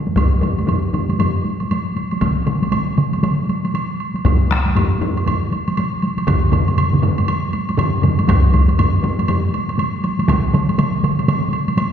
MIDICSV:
0, 0, Header, 1, 3, 480
1, 0, Start_track
1, 0, Tempo, 509338
1, 161, Time_signature, 4, 2, 24, 8
1, 5920, Tempo, 500000
1, 11336, End_track
2, 0, Start_track
2, 0, Title_t, "Taiko and cinematic ensemble drums"
2, 64, Note_on_c, 9, 48, 57
2, 150, Note_on_c, 9, 45, 97
2, 151, Note_on_c, 9, 41, 81
2, 158, Note_off_c, 9, 48, 0
2, 161, Note_on_c, 9, 48, 58
2, 244, Note_off_c, 9, 45, 0
2, 245, Note_off_c, 9, 41, 0
2, 255, Note_off_c, 9, 48, 0
2, 388, Note_on_c, 9, 45, 88
2, 399, Note_on_c, 9, 48, 45
2, 483, Note_off_c, 9, 45, 0
2, 493, Note_off_c, 9, 48, 0
2, 548, Note_on_c, 9, 48, 46
2, 636, Note_on_c, 9, 45, 88
2, 642, Note_off_c, 9, 48, 0
2, 645, Note_on_c, 9, 48, 62
2, 730, Note_off_c, 9, 45, 0
2, 739, Note_off_c, 9, 48, 0
2, 879, Note_on_c, 9, 45, 84
2, 889, Note_on_c, 9, 48, 47
2, 973, Note_off_c, 9, 45, 0
2, 983, Note_off_c, 9, 48, 0
2, 1029, Note_on_c, 9, 48, 48
2, 1123, Note_off_c, 9, 48, 0
2, 1123, Note_on_c, 9, 45, 85
2, 1127, Note_on_c, 9, 48, 65
2, 1217, Note_off_c, 9, 45, 0
2, 1221, Note_off_c, 9, 48, 0
2, 1368, Note_on_c, 9, 48, 47
2, 1462, Note_off_c, 9, 48, 0
2, 1515, Note_on_c, 9, 48, 44
2, 1609, Note_off_c, 9, 48, 0
2, 1612, Note_on_c, 9, 48, 60
2, 1706, Note_off_c, 9, 48, 0
2, 1849, Note_on_c, 9, 48, 52
2, 1943, Note_off_c, 9, 48, 0
2, 2000, Note_on_c, 9, 48, 52
2, 2086, Note_on_c, 9, 47, 90
2, 2088, Note_on_c, 9, 41, 72
2, 2093, Note_off_c, 9, 48, 0
2, 2093, Note_on_c, 9, 48, 63
2, 2180, Note_off_c, 9, 47, 0
2, 2182, Note_off_c, 9, 41, 0
2, 2187, Note_off_c, 9, 48, 0
2, 2323, Note_on_c, 9, 47, 88
2, 2336, Note_on_c, 9, 48, 52
2, 2417, Note_off_c, 9, 47, 0
2, 2430, Note_off_c, 9, 48, 0
2, 2473, Note_on_c, 9, 48, 50
2, 2563, Note_on_c, 9, 47, 82
2, 2567, Note_off_c, 9, 48, 0
2, 2568, Note_on_c, 9, 48, 66
2, 2658, Note_off_c, 9, 47, 0
2, 2662, Note_off_c, 9, 48, 0
2, 2802, Note_on_c, 9, 48, 52
2, 2806, Note_on_c, 9, 47, 88
2, 2896, Note_off_c, 9, 48, 0
2, 2900, Note_off_c, 9, 47, 0
2, 2945, Note_on_c, 9, 48, 50
2, 3040, Note_off_c, 9, 48, 0
2, 3043, Note_on_c, 9, 47, 88
2, 3043, Note_on_c, 9, 48, 61
2, 3137, Note_off_c, 9, 48, 0
2, 3138, Note_off_c, 9, 47, 0
2, 3289, Note_on_c, 9, 48, 49
2, 3384, Note_off_c, 9, 48, 0
2, 3434, Note_on_c, 9, 48, 49
2, 3525, Note_off_c, 9, 48, 0
2, 3525, Note_on_c, 9, 48, 55
2, 3619, Note_off_c, 9, 48, 0
2, 3908, Note_on_c, 9, 48, 43
2, 4002, Note_off_c, 9, 48, 0
2, 4004, Note_on_c, 9, 41, 90
2, 4005, Note_on_c, 9, 45, 99
2, 4008, Note_on_c, 9, 48, 62
2, 4098, Note_off_c, 9, 41, 0
2, 4099, Note_off_c, 9, 45, 0
2, 4102, Note_off_c, 9, 48, 0
2, 4247, Note_on_c, 9, 48, 47
2, 4249, Note_on_c, 9, 37, 66
2, 4342, Note_off_c, 9, 48, 0
2, 4343, Note_off_c, 9, 37, 0
2, 4387, Note_on_c, 9, 48, 48
2, 4480, Note_off_c, 9, 48, 0
2, 4480, Note_on_c, 9, 48, 66
2, 4487, Note_on_c, 9, 45, 92
2, 4575, Note_off_c, 9, 48, 0
2, 4582, Note_off_c, 9, 45, 0
2, 4721, Note_on_c, 9, 48, 49
2, 4724, Note_on_c, 9, 45, 96
2, 4815, Note_off_c, 9, 48, 0
2, 4819, Note_off_c, 9, 45, 0
2, 4855, Note_on_c, 9, 48, 49
2, 4949, Note_off_c, 9, 48, 0
2, 4962, Note_on_c, 9, 48, 68
2, 4963, Note_on_c, 9, 45, 88
2, 5056, Note_off_c, 9, 48, 0
2, 5057, Note_off_c, 9, 45, 0
2, 5196, Note_on_c, 9, 48, 49
2, 5290, Note_off_c, 9, 48, 0
2, 5350, Note_on_c, 9, 48, 46
2, 5443, Note_off_c, 9, 48, 0
2, 5443, Note_on_c, 9, 48, 59
2, 5537, Note_off_c, 9, 48, 0
2, 5680, Note_on_c, 9, 48, 49
2, 5774, Note_off_c, 9, 48, 0
2, 5820, Note_on_c, 9, 48, 49
2, 5909, Note_on_c, 9, 41, 88
2, 5911, Note_on_c, 9, 47, 93
2, 5914, Note_on_c, 9, 45, 91
2, 5915, Note_off_c, 9, 48, 0
2, 5919, Note_on_c, 9, 48, 64
2, 6005, Note_off_c, 9, 41, 0
2, 6007, Note_off_c, 9, 47, 0
2, 6010, Note_off_c, 9, 45, 0
2, 6015, Note_off_c, 9, 48, 0
2, 6146, Note_on_c, 9, 45, 91
2, 6152, Note_on_c, 9, 47, 93
2, 6157, Note_on_c, 9, 48, 56
2, 6242, Note_off_c, 9, 45, 0
2, 6248, Note_off_c, 9, 47, 0
2, 6253, Note_off_c, 9, 48, 0
2, 6308, Note_on_c, 9, 48, 51
2, 6388, Note_on_c, 9, 45, 64
2, 6398, Note_off_c, 9, 48, 0
2, 6398, Note_on_c, 9, 48, 63
2, 6399, Note_on_c, 9, 47, 64
2, 6484, Note_off_c, 9, 45, 0
2, 6494, Note_off_c, 9, 48, 0
2, 6495, Note_off_c, 9, 47, 0
2, 6533, Note_on_c, 9, 45, 66
2, 6545, Note_on_c, 9, 47, 72
2, 6629, Note_off_c, 9, 45, 0
2, 6632, Note_on_c, 9, 45, 95
2, 6637, Note_off_c, 9, 47, 0
2, 6637, Note_on_c, 9, 47, 91
2, 6648, Note_on_c, 9, 48, 52
2, 6728, Note_off_c, 9, 45, 0
2, 6733, Note_off_c, 9, 47, 0
2, 6744, Note_off_c, 9, 48, 0
2, 6789, Note_on_c, 9, 48, 54
2, 6882, Note_off_c, 9, 48, 0
2, 6882, Note_on_c, 9, 48, 65
2, 6978, Note_off_c, 9, 48, 0
2, 7122, Note_on_c, 9, 48, 51
2, 7218, Note_off_c, 9, 48, 0
2, 7273, Note_on_c, 9, 48, 48
2, 7355, Note_on_c, 9, 47, 100
2, 7359, Note_on_c, 9, 45, 90
2, 7363, Note_off_c, 9, 48, 0
2, 7363, Note_on_c, 9, 48, 61
2, 7451, Note_off_c, 9, 47, 0
2, 7455, Note_off_c, 9, 45, 0
2, 7459, Note_off_c, 9, 48, 0
2, 7590, Note_on_c, 9, 45, 96
2, 7603, Note_on_c, 9, 48, 51
2, 7605, Note_on_c, 9, 47, 86
2, 7686, Note_off_c, 9, 45, 0
2, 7699, Note_off_c, 9, 48, 0
2, 7701, Note_off_c, 9, 47, 0
2, 7746, Note_on_c, 9, 48, 49
2, 7834, Note_on_c, 9, 45, 101
2, 7842, Note_off_c, 9, 48, 0
2, 7845, Note_on_c, 9, 48, 73
2, 7850, Note_on_c, 9, 41, 98
2, 7930, Note_off_c, 9, 45, 0
2, 7941, Note_off_c, 9, 48, 0
2, 7946, Note_off_c, 9, 41, 0
2, 8077, Note_on_c, 9, 45, 88
2, 8090, Note_on_c, 9, 48, 52
2, 8173, Note_off_c, 9, 45, 0
2, 8186, Note_off_c, 9, 48, 0
2, 8229, Note_on_c, 9, 48, 52
2, 8320, Note_on_c, 9, 45, 95
2, 8325, Note_off_c, 9, 48, 0
2, 8326, Note_on_c, 9, 48, 69
2, 8416, Note_off_c, 9, 45, 0
2, 8422, Note_off_c, 9, 48, 0
2, 8563, Note_on_c, 9, 48, 54
2, 8564, Note_on_c, 9, 45, 96
2, 8659, Note_off_c, 9, 48, 0
2, 8660, Note_off_c, 9, 45, 0
2, 8710, Note_on_c, 9, 48, 60
2, 8803, Note_off_c, 9, 48, 0
2, 8803, Note_on_c, 9, 48, 67
2, 8807, Note_on_c, 9, 45, 90
2, 8899, Note_off_c, 9, 48, 0
2, 8903, Note_off_c, 9, 45, 0
2, 9043, Note_on_c, 9, 48, 52
2, 9139, Note_off_c, 9, 48, 0
2, 9184, Note_on_c, 9, 48, 53
2, 9280, Note_off_c, 9, 48, 0
2, 9283, Note_on_c, 9, 48, 65
2, 9379, Note_off_c, 9, 48, 0
2, 9524, Note_on_c, 9, 48, 55
2, 9620, Note_off_c, 9, 48, 0
2, 9672, Note_on_c, 9, 48, 53
2, 9757, Note_on_c, 9, 47, 100
2, 9762, Note_off_c, 9, 48, 0
2, 9762, Note_on_c, 9, 48, 77
2, 9763, Note_on_c, 9, 41, 94
2, 9853, Note_off_c, 9, 47, 0
2, 9858, Note_off_c, 9, 48, 0
2, 9859, Note_off_c, 9, 41, 0
2, 10004, Note_on_c, 9, 47, 100
2, 10010, Note_on_c, 9, 48, 57
2, 10100, Note_off_c, 9, 47, 0
2, 10106, Note_off_c, 9, 48, 0
2, 10150, Note_on_c, 9, 48, 55
2, 10241, Note_on_c, 9, 47, 97
2, 10242, Note_off_c, 9, 48, 0
2, 10242, Note_on_c, 9, 48, 80
2, 10337, Note_off_c, 9, 47, 0
2, 10338, Note_off_c, 9, 48, 0
2, 10482, Note_on_c, 9, 48, 55
2, 10487, Note_on_c, 9, 47, 101
2, 10578, Note_off_c, 9, 48, 0
2, 10583, Note_off_c, 9, 47, 0
2, 10631, Note_on_c, 9, 48, 60
2, 10720, Note_off_c, 9, 48, 0
2, 10720, Note_on_c, 9, 48, 75
2, 10721, Note_on_c, 9, 47, 96
2, 10816, Note_off_c, 9, 48, 0
2, 10817, Note_off_c, 9, 47, 0
2, 10954, Note_on_c, 9, 48, 57
2, 11050, Note_off_c, 9, 48, 0
2, 11102, Note_on_c, 9, 48, 56
2, 11192, Note_off_c, 9, 48, 0
2, 11192, Note_on_c, 9, 48, 66
2, 11288, Note_off_c, 9, 48, 0
2, 11336, End_track
3, 0, Start_track
3, 0, Title_t, "Drums"
3, 164, Note_on_c, 9, 76, 45
3, 259, Note_off_c, 9, 76, 0
3, 407, Note_on_c, 9, 76, 35
3, 501, Note_off_c, 9, 76, 0
3, 553, Note_on_c, 9, 76, 30
3, 647, Note_off_c, 9, 76, 0
3, 647, Note_on_c, 9, 76, 42
3, 741, Note_off_c, 9, 76, 0
3, 886, Note_on_c, 9, 76, 31
3, 980, Note_off_c, 9, 76, 0
3, 1034, Note_on_c, 9, 76, 35
3, 1128, Note_off_c, 9, 76, 0
3, 1129, Note_on_c, 9, 76, 48
3, 1223, Note_off_c, 9, 76, 0
3, 1509, Note_on_c, 9, 76, 32
3, 1603, Note_off_c, 9, 76, 0
3, 1612, Note_on_c, 9, 76, 43
3, 1707, Note_off_c, 9, 76, 0
3, 1853, Note_on_c, 9, 76, 34
3, 1948, Note_off_c, 9, 76, 0
3, 1992, Note_on_c, 9, 76, 36
3, 2087, Note_off_c, 9, 76, 0
3, 2087, Note_on_c, 9, 76, 50
3, 2181, Note_off_c, 9, 76, 0
3, 2325, Note_on_c, 9, 76, 39
3, 2420, Note_off_c, 9, 76, 0
3, 2478, Note_on_c, 9, 76, 35
3, 2564, Note_off_c, 9, 76, 0
3, 2564, Note_on_c, 9, 76, 48
3, 2659, Note_off_c, 9, 76, 0
3, 2804, Note_on_c, 9, 76, 34
3, 2898, Note_off_c, 9, 76, 0
3, 2953, Note_on_c, 9, 76, 37
3, 3047, Note_off_c, 9, 76, 0
3, 3049, Note_on_c, 9, 76, 45
3, 3143, Note_off_c, 9, 76, 0
3, 3293, Note_on_c, 9, 76, 36
3, 3387, Note_off_c, 9, 76, 0
3, 3438, Note_on_c, 9, 76, 36
3, 3532, Note_off_c, 9, 76, 0
3, 3532, Note_on_c, 9, 76, 46
3, 3627, Note_off_c, 9, 76, 0
3, 3771, Note_on_c, 9, 76, 36
3, 3866, Note_off_c, 9, 76, 0
3, 3918, Note_on_c, 9, 76, 36
3, 4012, Note_off_c, 9, 76, 0
3, 4015, Note_on_c, 9, 76, 48
3, 4109, Note_off_c, 9, 76, 0
3, 4256, Note_on_c, 9, 76, 37
3, 4350, Note_off_c, 9, 76, 0
3, 4395, Note_on_c, 9, 76, 33
3, 4489, Note_off_c, 9, 76, 0
3, 4491, Note_on_c, 9, 76, 49
3, 4586, Note_off_c, 9, 76, 0
3, 4729, Note_on_c, 9, 76, 34
3, 4823, Note_off_c, 9, 76, 0
3, 4876, Note_on_c, 9, 76, 39
3, 4970, Note_off_c, 9, 76, 0
3, 4972, Note_on_c, 9, 76, 50
3, 5066, Note_off_c, 9, 76, 0
3, 5208, Note_on_c, 9, 76, 37
3, 5302, Note_off_c, 9, 76, 0
3, 5350, Note_on_c, 9, 76, 40
3, 5441, Note_off_c, 9, 76, 0
3, 5441, Note_on_c, 9, 76, 51
3, 5535, Note_off_c, 9, 76, 0
3, 5677, Note_on_c, 9, 76, 38
3, 5771, Note_off_c, 9, 76, 0
3, 5825, Note_on_c, 9, 76, 42
3, 5916, Note_off_c, 9, 76, 0
3, 5916, Note_on_c, 9, 76, 58
3, 6012, Note_off_c, 9, 76, 0
3, 6158, Note_on_c, 9, 76, 46
3, 6254, Note_off_c, 9, 76, 0
3, 6302, Note_on_c, 9, 76, 41
3, 6398, Note_off_c, 9, 76, 0
3, 6398, Note_on_c, 9, 76, 54
3, 6494, Note_off_c, 9, 76, 0
3, 6641, Note_on_c, 9, 76, 40
3, 6737, Note_off_c, 9, 76, 0
3, 6783, Note_on_c, 9, 76, 46
3, 6879, Note_off_c, 9, 76, 0
3, 6880, Note_on_c, 9, 76, 55
3, 6976, Note_off_c, 9, 76, 0
3, 7119, Note_on_c, 9, 76, 45
3, 7215, Note_off_c, 9, 76, 0
3, 7270, Note_on_c, 9, 76, 42
3, 7366, Note_off_c, 9, 76, 0
3, 7367, Note_on_c, 9, 76, 53
3, 7463, Note_off_c, 9, 76, 0
3, 7602, Note_on_c, 9, 76, 43
3, 7698, Note_off_c, 9, 76, 0
3, 7751, Note_on_c, 9, 76, 46
3, 7846, Note_off_c, 9, 76, 0
3, 7846, Note_on_c, 9, 76, 59
3, 7942, Note_off_c, 9, 76, 0
3, 8085, Note_on_c, 9, 76, 44
3, 8181, Note_off_c, 9, 76, 0
3, 8231, Note_on_c, 9, 76, 41
3, 8327, Note_off_c, 9, 76, 0
3, 8328, Note_on_c, 9, 76, 55
3, 8424, Note_off_c, 9, 76, 0
3, 8566, Note_on_c, 9, 76, 41
3, 8662, Note_off_c, 9, 76, 0
3, 8714, Note_on_c, 9, 76, 43
3, 8801, Note_off_c, 9, 76, 0
3, 8801, Note_on_c, 9, 76, 57
3, 8897, Note_off_c, 9, 76, 0
3, 9048, Note_on_c, 9, 76, 43
3, 9144, Note_off_c, 9, 76, 0
3, 9194, Note_on_c, 9, 76, 42
3, 9290, Note_off_c, 9, 76, 0
3, 9290, Note_on_c, 9, 76, 56
3, 9386, Note_off_c, 9, 76, 0
3, 9527, Note_on_c, 9, 76, 43
3, 9623, Note_off_c, 9, 76, 0
3, 9677, Note_on_c, 9, 76, 45
3, 9772, Note_off_c, 9, 76, 0
3, 9772, Note_on_c, 9, 76, 56
3, 9868, Note_off_c, 9, 76, 0
3, 10014, Note_on_c, 9, 76, 43
3, 10110, Note_off_c, 9, 76, 0
3, 10154, Note_on_c, 9, 76, 40
3, 10245, Note_off_c, 9, 76, 0
3, 10245, Note_on_c, 9, 76, 57
3, 10341, Note_off_c, 9, 76, 0
3, 10489, Note_on_c, 9, 76, 42
3, 10585, Note_off_c, 9, 76, 0
3, 10633, Note_on_c, 9, 76, 43
3, 10723, Note_off_c, 9, 76, 0
3, 10723, Note_on_c, 9, 76, 55
3, 10819, Note_off_c, 9, 76, 0
3, 10959, Note_on_c, 9, 76, 44
3, 11055, Note_off_c, 9, 76, 0
3, 11104, Note_on_c, 9, 76, 45
3, 11196, Note_off_c, 9, 76, 0
3, 11196, Note_on_c, 9, 76, 59
3, 11292, Note_off_c, 9, 76, 0
3, 11336, End_track
0, 0, End_of_file